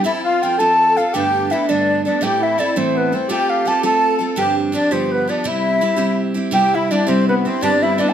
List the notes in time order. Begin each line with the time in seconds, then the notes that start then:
0.03 F3 C4 E4 F4 A4 E5
0.23 F4 F5
0.42 F3 C4 F4 A4 G5
0.57 F3 C4 F4 A4 A5
0.97 C4 F4 A4 F5
1.13 G2 D3 A3 B3 D4 G4 A4 G5
1.50 A3 B3 D4 E4 A4 E5
1.67 G2 D3 A3 B3 D4 A4 D5
2.04 B3 D4 A4 D5
2.08 A3
2.21 A2 E3 A3 C4 E4 G4 A4 G5
2.41 E4 E5
2.58 A3 C4 E4 A4 D5
2.75 A2 E3 A3 C4 E4 A4 C5
2.94 B3 B4
3.12 A3 C4 E4 A4 C5
3.28 A3 C4 F4 G4 A4 G5
3.50 F5
3.65 A3 C4 F4 A4 A5
3.82 A3 C4 F4 A4 A5
4.19 C4 F4 A4
4.36 G2 D3 F3 C4 D4 G4 G5
4.72 F3 C4 D4 G4 D5
4.91 G2 D3 F3 B3 C4 F4 G4 C5
5.11 B3 B4
5.28 F3 B3 D4 F4 G4 D5
5.44 C3 G3 C4 E4 G4 E5
5.81 G3 C4 E4 G4
5.96 C3 G3 C4 E4 G4
6.34 C4 E4 G4
6.51 C3 G3 C4 E4 G4 G5
6.56 G4
6.72 E4 E5
6.90 G3 C4 D4 E4 G4 D5
7.07 C3 G3 C4 E4 G4 C5
7.28 B3 B4
7.45 C4 E4 G4 C5
7.61 G2 D3 G3 B3 D4 G4 D5
7.82 E4 E5
7.98 G3 B3 D4 G4 D5
8.09 A5